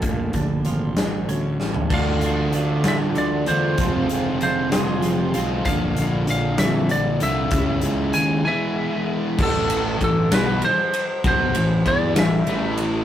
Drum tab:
CC |------------|x-----------|------------|------------|
RD |------------|------------|------------|------------|
HH |x-x-x-x-x---|--x-x-x-x-x-|x-x-x-x-x-x-|x-x-x-x-x-x-|
SD |------o---o-|------o-----|------o-----|------o-----|
FT |-----------o|------------|------------|------------|
BD |o-o---------|o-----------|o-----------|o-----------|

CC |------------|x-----------|------------|
RD |------------|--x-x-x-x-x-|x-x-x-x-x-x-|
HH |x-x-x-------|------------|------------|
SD |------------|------o-----|------o-----|
FT |------------|------------|------------|
BD |o-----------|o---o-------|o---o-------|